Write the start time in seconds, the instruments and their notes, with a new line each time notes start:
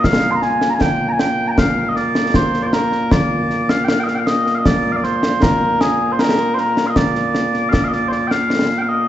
Already playing: bagpipes A#2 A#3
0.04 bagpipes F5, concert bass drum, snare
0.31 bagpipes C6
0.35 bagpipes A#5
0.42 bagpipes G#5, snare
0.61 snare
0.70 bagpipes A#5
0.74 bagpipes G#5
0.81 bagpipes G5, concert bass drum, snare
1.09 bagpipes G#5 A#5
1.19 bagpipes G5, snare
1.48 bagpipes G5 A#5
1.58 bagpipes F5, concert bass drum, snare
1.89 bagpipes D#5
1.96 bagpipes D5, snare
2.15 snare
2.34 bagpipes C5, concert bass drum, snare
2.54 snare
2.62 bagpipes C5 D5
2.73 bagpipes A#4, snare
2.92 snare
3.11 bagpipes D5, concert bass drum, snare
3.50 snare
3.69 bagpipes F5, snare
3.84 bagpipes F5 G5, snare
4.00 bagpipes D#5 G5
4.07 bagpipes F5, snare
4.15 bagpipes F5 G5
4.27 bagpipes D#5, snare
4.47 snare
4.55 bagpipes D#5 F5
4.66 bagpipes D5, concert bass drum, snare
4.92 bagpipes F5
4.96 bagpipes D5
5.03 bagpipes C5, snare
5.23 snare
5.42 bagpipes A#4, concert bass drum, snare
5.81 bagpipes G#4, snare
6.12 bagpipes C5
6.19 bagpipes A#4, snare
6.54 bagpipes C5, snare
6.58 bagpipes A#4
6.77 snare
6.87 bagpipes D#5 F5
6.96 bagpipes D5, concert bass drum, snare
7.15 snare
7.35 snare
7.54 snare
7.69 bagpipes D5 F5
7.73 concert bass drum, snare
7.84 bagpipes D#5 F5
7.92 bagpipes D5, snare
8.08 bagpipes C5 D5
8.12 snare
8.27 bagpipes F5 G5, snare
8.50 snare
8.70 snare
8.78 bagpipes F5 G5
8.89 bagpipes D#5